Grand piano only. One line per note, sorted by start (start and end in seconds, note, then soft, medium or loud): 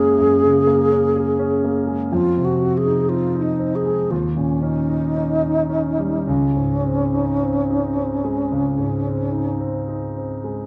0.00 0.12 F#2 medium
0.00 0.43 C#3 soft
0.00 0.32 G#3 soft
0.00 0.67 A#3 soft
0.00 0.92 C#4 soft
0.00 1.16 G#4 soft
0.18 2.08 F#2 soft
0.43 0.81 C#3 soft
0.67 1.05 A#3 soft
0.92 1.29 C#4 soft
1.16 1.54 G#4 soft
1.39 1.77 C#4 soft
1.64 2.02 A#3 soft
1.87 2.11 G#3 soft
2.12 4.07 F2 soft
2.37 2.75 C3 soft
2.62 3.01 C4 soft
2.86 3.25 D#4 soft
3.09 3.49 C4 soft
3.35 3.75 D#4 soft
3.59 4.00 C4 soft
3.85 4.11 G#3 soft
4.11 6.23 D#2 soft
4.36 4.78 A#2 soft
4.62 5.04 C#4 soft
4.89 5.31 D#4 soft
5.16 5.59 C#4 soft
5.42 5.87 D#4 soft
5.69 6.15 C#4 soft
5.98 6.27 G3 soft
6.27 8.47 C#2 soft
6.56 7.02 G#2 soft
6.85 7.30 C4 soft
7.14 7.58 D#4 soft
7.42 7.86 C4 soft
7.70 8.13 D#4 soft
7.96 8.40 C4 soft
8.24 8.68 G#3 soft
8.52 10.65 C#2 soft
8.78 9.22 G#2 soft
9.06 9.50 C4 soft
9.32 9.76 D#4 soft
9.60 10.04 C4 soft
9.89 10.32 D#4 soft
10.17 10.59 C4 soft
10.44 10.66 G#3 soft